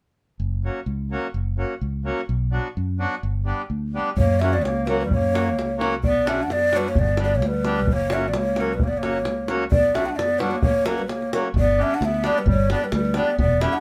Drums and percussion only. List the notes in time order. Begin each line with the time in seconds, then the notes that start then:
4.18 davul low
4.31 davul high
4.41 davul high
4.65 davul high
4.87 davul high
5.11 davul low
5.24 davul high
5.35 davul high
5.59 davul high
5.81 davul high
6.03 davul low
6.27 davul high
6.50 davul high
6.73 davul high
6.95 davul low
7.08 davul high
7.17 davul high
7.31 davul high
7.42 davul high
7.65 davul high
7.78 davul high
7.87 davul low
8.00 davul high
8.10 davul high
8.34 davul high
8.56 davul high
8.79 davul low
8.93 davul high
9.03 davul high
9.25 davul high
9.48 davul high
9.72 davul low
9.86 davul high
9.95 davul high
10.19 davul high
10.40 davul high
10.62 davul low
10.86 davul high
10.99 davul high
11.09 davul high
11.22 davul high
11.33 davul high
11.56 davul low
11.71 davul high
12.02 davul high
12.14 davul high
12.24 davul high
12.47 davul low
12.60 davul high
12.70 davul high
12.92 davul high
13.05 davul high
13.14 davul high
13.39 davul low
13.52 davul high
13.61 davul high